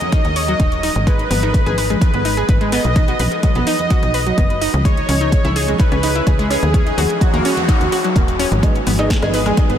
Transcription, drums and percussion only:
0.01 closed hi-hat soft
0.01 high conga medium
0.12 kick loud
0.12 closed hi-hat medium
0.25 closed hi-hat soft
0.36 open hi-hat loud
0.48 closed hi-hat soft
0.60 kick loud
0.60 closed hi-hat medium
0.72 closed hi-hat soft
0.83 open hi-hat loud
0.95 closed hi-hat soft
0.95 high conga medium
1.07 kick loud
1.07 closed hi-hat medium
1.19 closed hi-hat soft
1.31 open hi-hat loud
1.31 high conga medium
1.43 closed hi-hat soft
1.43 cowbell medium
1.54 kick loud
1.54 closed hi-hat medium
1.66 closed hi-hat soft
1.66 high conga medium
1.78 open hi-hat loud
1.90 closed hi-hat soft
1.90 high conga medium
2.01 kick loud
2.01 closed hi-hat medium
2.01 cowbell medium
2.14 closed hi-hat soft
2.25 open hi-hat loud
2.37 closed hi-hat soft
2.49 kick loud
2.49 closed hi-hat medium
2.61 closed hi-hat soft
2.72 open hi-hat loud
2.72 cowbell medium
2.84 closed hi-hat soft
2.84 high conga medium
2.96 kick loud
2.96 closed hi-hat medium
3.08 closed hi-hat soft
3.19 open hi-hat loud
3.19 high conga medium
3.31 closed hi-hat soft
3.31 cowbell medium
3.43 kick loud
3.43 closed hi-hat medium
3.55 closed hi-hat soft
3.55 high conga medium
3.67 open hi-hat medium
3.79 closed hi-hat soft
3.79 high conga medium
3.90 kick loud
3.90 closed hi-hat medium
4.03 closed hi-hat soft
4.14 open hi-hat medium
4.26 closed hi-hat soft
4.38 kick loud
4.38 closed hi-hat medium
4.50 closed hi-hat soft
4.62 open hi-hat loud
4.74 closed hi-hat soft
4.74 high conga medium
4.85 kick loud
4.85 closed hi-hat medium
4.97 closed hi-hat soft
5.09 open hi-hat medium
5.09 high conga medium
5.20 closed hi-hat soft
5.20 cowbell medium
5.32 kick loud
5.32 closed hi-hat medium
5.45 closed hi-hat soft
5.45 high conga loud
5.56 open hi-hat medium
5.68 closed hi-hat soft
5.68 high conga medium
5.79 kick loud
5.79 closed hi-hat medium
5.79 cowbell medium
5.92 closed hi-hat soft
6.03 open hi-hat loud
6.15 closed hi-hat soft
6.27 kick loud
6.27 closed hi-hat medium
6.39 closed hi-hat soft
6.50 open hi-hat loud
6.50 cowbell medium
6.63 closed hi-hat soft
6.63 high conga medium
6.74 kick loud
6.74 closed hi-hat loud
6.87 closed hi-hat soft
6.98 open hi-hat loud
6.98 high conga loud
7.09 closed hi-hat soft
7.09 cowbell medium
7.21 kick loud
7.21 closed hi-hat medium
7.33 closed hi-hat soft
7.33 high conga medium
7.45 open hi-hat loud
7.57 closed hi-hat soft
7.57 high conga medium
7.68 kick loud
7.68 closed hi-hat medium
7.81 closed hi-hat soft
7.92 open hi-hat loud
8.04 closed hi-hat soft
8.16 kick loud
8.16 closed hi-hat medium
8.28 closed hi-hat soft
8.40 open hi-hat loud
8.51 closed hi-hat soft
8.51 high conga medium
8.63 kick loud
8.63 closed hi-hat medium
8.75 closed hi-hat soft
8.86 open hi-hat loud
8.86 high conga medium
8.99 closed hi-hat soft
8.99 cowbell medium
9.10 kick loud
9.10 snare loud
9.10 closed hi-hat medium
9.22 cross-stick medium
9.22 closed hi-hat soft
9.22 high conga loud
9.34 open hi-hat loud
9.46 cross-stick medium
9.46 closed hi-hat soft
9.46 high conga medium
9.57 kick loud
9.57 closed hi-hat medium
9.57 cowbell medium
9.70 closed hi-hat soft

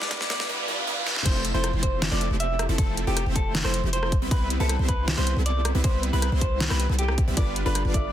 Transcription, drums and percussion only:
0.02 snare medium
0.11 kick loud
0.11 snare medium
0.11 closed hi-hat medium
0.21 snare medium
0.30 snare loud
0.30 closed hi-hat medium
0.40 snare medium
1.07 snare medium
1.16 snare medium
1.25 kick loud
1.25 closed hi-hat medium
1.25 crash loud
1.45 closed hi-hat medium
1.64 cross-stick medium
1.64 closed hi-hat medium
1.83 kick medium
1.83 closed hi-hat medium
2.02 snare loud
2.02 closed hi-hat medium
2.21 closed hi-hat medium
2.40 closed hi-hat medium
2.59 cross-stick medium
2.59 closed hi-hat medium
2.78 kick loud
2.78 closed hi-hat medium
2.97 closed hi-hat medium
3.17 cross-stick medium
3.17 closed hi-hat medium
3.36 kick medium
3.36 closed hi-hat medium
3.55 snare loud
3.55 closed hi-hat medium
3.65 cross-stick medium
3.74 closed hi-hat medium
3.93 closed hi-hat medium
4.03 cross-stick medium
4.12 kick loud
4.12 closed hi-hat medium
4.31 kick loud
4.31 closed hi-hat medium
4.50 closed hi-hat medium
4.69 cross-stick medium
4.69 closed hi-hat medium
4.89 kick medium
4.89 closed hi-hat medium
5.08 snare loud
5.08 closed hi-hat medium
5.27 closed hi-hat medium
5.46 closed hi-hat medium
5.65 cross-stick medium
5.65 closed hi-hat medium
5.84 kick loud
5.84 closed hi-hat medium
6.03 closed hi-hat medium
6.22 cross-stick medium
6.22 closed hi-hat medium
6.41 kick medium
6.41 closed hi-hat medium
6.60 snare loud
6.60 closed hi-hat medium
6.70 cross-stick medium
6.80 closed hi-hat medium
6.99 closed hi-hat medium
7.08 cross-stick medium
7.18 kick loud
7.18 closed hi-hat medium
7.37 kick loud
7.37 closed hi-hat medium
7.56 closed hi-hat medium
7.75 cross-stick medium
7.75 closed hi-hat medium
7.94 kick medium
7.94 closed hi-hat medium

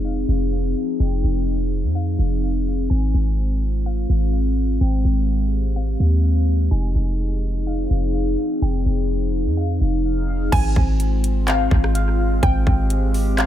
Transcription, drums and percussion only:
10.52 kick loud
10.52 closed hi-hat medium
10.52 crash medium
10.76 kick medium
11.00 closed hi-hat medium
11.24 closed hi-hat medium
11.48 clap loud
11.48 closed hi-hat medium
11.71 kick loud
11.84 cross-stick medium
11.95 closed hi-hat medium
12.43 kick loud
12.43 closed hi-hat medium
12.67 kick loud
12.90 closed hi-hat medium
13.14 open hi-hat soft
13.38 clap loud
13.38 closed hi-hat medium

